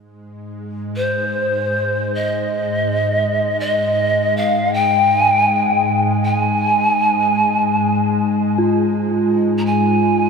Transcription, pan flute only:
0, 0, Header, 1, 2, 480
1, 0, Start_track
1, 0, Key_signature, -4, "major"
1, 0, Tempo, 500000
1, 9884, End_track
2, 0, Start_track
2, 0, Title_t, "Pan flute"
2, 0, Program_c, 0, 75
2, 923, Note_on_c, 0, 72, 67
2, 2062, Note_on_c, 0, 75, 68
2, 2077, Note_off_c, 0, 72, 0
2, 3451, Note_off_c, 0, 75, 0
2, 3457, Note_on_c, 0, 75, 75
2, 4193, Note_on_c, 0, 77, 71
2, 4207, Note_off_c, 0, 75, 0
2, 4547, Note_on_c, 0, 79, 83
2, 4562, Note_off_c, 0, 77, 0
2, 5745, Note_off_c, 0, 79, 0
2, 6001, Note_on_c, 0, 80, 78
2, 7636, Note_off_c, 0, 80, 0
2, 9202, Note_on_c, 0, 82, 55
2, 9269, Note_on_c, 0, 80, 73
2, 9284, Note_off_c, 0, 82, 0
2, 9884, Note_off_c, 0, 80, 0
2, 9884, End_track
0, 0, End_of_file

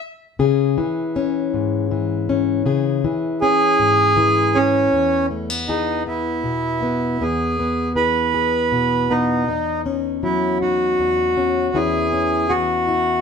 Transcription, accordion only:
0, 0, Header, 1, 2, 480
1, 0, Start_track
1, 0, Tempo, 756620
1, 251, Time_signature, 6, 3, 24, 8
1, 8381, End_track
2, 0, Start_track
2, 0, Title_t, "Accordion"
2, 0, Program_c, 0, 21
2, 2164, Note_on_c, 0, 68, 94
2, 2885, Note_on_c, 0, 61, 74
2, 2906, Note_off_c, 0, 68, 0
2, 3340, Note_off_c, 0, 61, 0
2, 3602, Note_on_c, 0, 63, 50
2, 3827, Note_off_c, 0, 63, 0
2, 3853, Note_on_c, 0, 64, 56
2, 4577, Note_on_c, 0, 68, 64
2, 4591, Note_off_c, 0, 64, 0
2, 5026, Note_off_c, 0, 68, 0
2, 5049, Note_on_c, 0, 71, 76
2, 5776, Note_on_c, 0, 63, 53
2, 5790, Note_off_c, 0, 71, 0
2, 6227, Note_off_c, 0, 63, 0
2, 6493, Note_on_c, 0, 64, 61
2, 6715, Note_off_c, 0, 64, 0
2, 6731, Note_on_c, 0, 66, 68
2, 7452, Note_on_c, 0, 68, 75
2, 7473, Note_off_c, 0, 66, 0
2, 7923, Note_on_c, 0, 66, 70
2, 7946, Note_off_c, 0, 68, 0
2, 8381, Note_off_c, 0, 66, 0
2, 8381, End_track
0, 0, End_of_file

